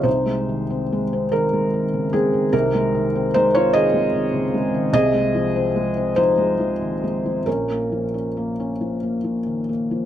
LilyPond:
<<
  \new Staff \with { instrumentName = "Felt piano" } { \time 6/8 \key aes \mixolydian \tempo 4. = 48 <ees' c''>4. <ees' bes'>4 <c' aes'>8 | <ees' bes'>4 <ees' c''>16 <f' des''>16 <aes' ees''>4. | <aes' ees''>4. <ees' c''>4. | <des' bes'>2~ <des' bes'>8 r8 | }
  \new Staff \with { instrumentName = "Felt piano" } { \clef bass \time 6/8 \key aes \mixolydian <c, c>16 aes16 ees16 c'16 aes16 c'16 ees16 aes16 ees16 des16 aes16 ees16 | <c, c>16 aes16 ees16 c'16 aes16 c'16 ees16 aes16 ees16 des16 aes16 ees16 | <c, c>16 aes16 f16 c'16 aes16 c'16 f16 aes16 f16 ees16 aes16 f16 | <bes,, bes,>16 bes16 f16 des'16 bes16 des'16 f16 bes16 f16 ees16 bes16 f16 | }
>>